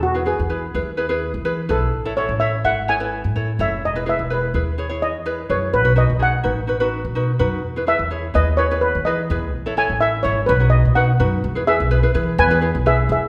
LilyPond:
<<
  \new Staff \with { instrumentName = "Steel pan" } { \time 4/4 \key e \major \tempo 4 = 126 fis'8 gis'8 r2 r8 a'8~ | a'8 cis''8 e''8 fis''8 gis''4. e''8 | dis''8 e''8 b'8 r4 dis''4 cis''8 | b'8 dis''8 fis''4 r2 |
r8 e''4 dis''8 cis''8 b'8 dis''4 | r8 gis''8 e''8 cis''8 b'8 dis''8 fis''4 | r8 <gis' e''>4. <b' gis''>4 <gis' e''>8 <gis' e''>8 | }
  \new Staff \with { instrumentName = "Ukulele" } { \time 4/4 \key e \major r16 <e' gis' b'>16 <e' gis' b'>16 r16 <e' gis' b'>16 r16 <e' gis' b'>16 r16 <e' gis' b'>16 <e' gis' b'>8 r16 <e' gis' b'>16 r16 <e' gis' b'>8 | r16 <e' a' cis''>16 <e' a' cis''>16 r16 <e' a' cis''>16 r16 <e' a' e''>16 r16 <e' a' cis''>16 <e' a' b'>8 r16 <e' a' cis''>16 r16 <e' a' cis''>8 | r16 <e' gis' b'>16 <e' gis' b'>16 r16 <e' gis' b'>16 r16 <e' gis' b'>16 r16 <e' gis' cis''>16 <e' gis' cis''>8 r16 <e' gis' b'>16 r16 <e' gis' b'>8 | r16 <dis' fis' b'>16 <dis' fis' b'>16 r16 <dis' fis' gis'>16 r16 <dis' fis' b'>16 r16 <dis' fis' b'>16 <dis' fis' b'>8 r16 <dis' fis' b'>16 r16 <dis' fis' b'>8 |
r16 <e' gis' b'>16 <e' gis' b'>16 r16 <e' gis' cis''>16 r16 <e' gis' b'>16 r16 <e' gis' b'>16 <e' gis' b'>8 r16 <e' gis' b'>16 r16 <e' gis' b'>8 | r16 <e' a' cis''>16 <e' a' cis''>16 r16 <e' a' e''>16 r16 <e' a' cis''>16 r16 <dis' fis' b'>16 <dis' fis' gis'>8 r16 <dis' fis' b'>16 r16 <dis' fis' b'>8 | r16 <e' gis' b'>16 <e' gis' b'>16 r16 <e' gis' b'>16 <e' gis' b'>16 <e' gis' b'>8 r16 <e' gis' b'>16 <e' gis' b'>16 r16 <e' gis' b'>8. r16 | }
  \new Staff \with { instrumentName = "Upright bass" } { \clef bass \time 4/4 \key e \major e,8. e,8. dis,4~ dis,16 e8. b,,8 | a,,8. a,,8. gis,,4~ gis,,16 a,8. fis,,8 | e,,8. e,,8. dis,4~ dis,16 e,8. fis,8 | b,,8. b,,8. a,,4~ a,,16 b,8. fis,8 |
e,8. e,8. dis,4~ dis,16 e8. e,8 | a,,8. a,,8. gis,,8 b,,8. b,8. fis,8 | e,8. b,,8 r16 e8 e,8. b,,8. e,8 | }
>>